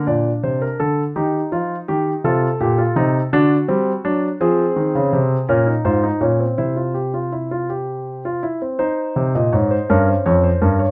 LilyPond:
<<
  \new Staff \with { instrumentName = "Grand piano" } { \time 6/8 \key bes \mixolydian \tempo 4. = 55 << { d''8 c''16 bes'16 a'8 g'8 f'8 g'8 | a'4. fis'4. | \key c \phrygian aes'4. bes'8 c''8 des''8 | c''2~ c''8 r8 |
c''8. ees''16 des''16 c''16 bes'16 c''16 des''16 c''16 bes'16 des''16 | } \\ { d'4. ees'4. | f'8 g'16 f'16 ees'8 d'8 c'8 d'8 | c'4. des'16 ees'16 f'16 ees'16 des'16 c'16 | e'16 f'16 g'16 f'16 e'16 f'16 g'8. f'16 e'16 c'16 |
ees'4. des'4. | } >> }
  \new Staff \with { instrumentName = "Grand piano" } { \clef bass \time 6/8 \key bes \mixolydian bes,8 c8 d8 ees8 f8 ees8 | c8 bes,8 c8 d8 g8 fis8 | \key c \phrygian f8 ees16 des16 c8 bes,8 aes,8 bes,8 | c2~ c8 r8 |
r8 c16 bes,16 aes,8 g,8 f,8 g,8 | }
>>